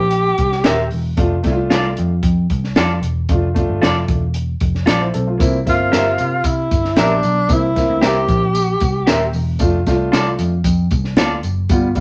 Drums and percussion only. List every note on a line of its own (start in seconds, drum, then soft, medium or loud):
0.11 closed hi-hat medium
0.38 kick medium
0.38 closed hi-hat medium
0.52 snare soft
0.64 snare loud
0.64 closed hi-hat medium
0.91 open hi-hat soft
1.17 kick loud
1.17 closed hi-hat medium
1.44 kick medium
1.44 snare soft
1.44 closed hi-hat medium
1.71 snare loud
1.71 closed hi-hat medium
1.97 closed hi-hat medium
2.23 kick medium
2.23 closed hi-hat medium
2.50 kick medium
2.50 closed hi-hat medium
2.64 snare soft
2.76 snare loud
2.76 closed hi-hat medium
3.03 closed hi-hat medium
3.29 kick loud
3.29 closed hi-hat medium
3.56 kick medium
3.56 closed hi-hat medium
3.83 snare loud
3.83 closed hi-hat medium
4.08 kick medium
4.08 closed hi-hat medium
4.34 closed hi-hat medium
4.60 kick medium
4.60 closed hi-hat medium
4.75 snare soft
4.87 snare loud
4.87 closed hi-hat medium
5.14 closed hi-hat medium
5.40 kick loud
5.40 closed hi-hat medium
5.40 tambourine medium
5.40 muted conga soft
5.67 kick medium
5.67 snare soft
5.67 closed hi-hat medium
5.67 tambourine soft
5.93 snare medium
5.93 closed hi-hat medium
5.93 tambourine medium
5.93 high conga medium
6.18 closed hi-hat medium
6.18 tambourine soft
6.44 kick medium
6.44 closed hi-hat medium
6.44 tambourine medium
6.44 muted conga soft
6.71 kick medium
6.71 closed hi-hat medium
6.71 tambourine medium
6.71 muted conga medium
6.84 snare soft
6.96 snare loud
6.96 closed hi-hat medium
6.96 tambourine medium
6.96 high conga medium
7.09 high conga medium
7.23 closed hi-hat medium
7.23 tambourine soft
7.49 kick loud
7.49 closed hi-hat medium
7.49 tambourine medium
7.49 muted conga soft
7.76 kick medium
7.76 snare soft
7.76 closed hi-hat medium
7.76 tambourine soft
8.01 snare medium
8.01 closed hi-hat medium
8.01 tambourine medium
8.01 high conga medium
8.28 kick medium
8.28 closed hi-hat medium
8.28 tambourine soft
8.28 muted conga soft
8.53 closed hi-hat medium
8.53 tambourine medium
8.53 muted conga soft
8.80 kick medium
8.80 closed hi-hat medium
8.80 tambourine medium
8.80 muted conga soft
9.07 snare loud
9.07 closed hi-hat medium
9.07 tambourine medium
9.07 high conga medium
9.20 high conga medium
9.33 open hi-hat soft
9.33 tambourine soft
9.59 kick loud
9.59 closed hi-hat medium
9.59 tambourine medium
9.59 muted conga soft
9.86 kick medium
9.86 snare soft
9.86 closed hi-hat medium
9.86 tambourine soft
10.13 snare medium
10.13 closed hi-hat medium
10.13 tambourine medium
10.13 high conga medium
10.39 closed hi-hat medium
10.39 tambourine soft
10.39 muted conga soft
10.64 kick medium
10.64 closed hi-hat loud
10.64 tambourine medium
10.64 muted conga soft
10.91 kick medium
10.91 closed hi-hat medium
10.91 tambourine medium
10.91 muted conga soft
11.04 snare soft
11.17 snare loud
11.17 closed hi-hat medium
11.17 tambourine medium
11.17 high conga medium
11.31 high conga medium
11.43 closed hi-hat medium
11.43 tambourine soft
11.69 kick loud
11.69 closed hi-hat medium
11.69 tambourine medium
11.69 muted conga soft
11.95 kick medium
11.95 closed hi-hat medium
11.95 tambourine soft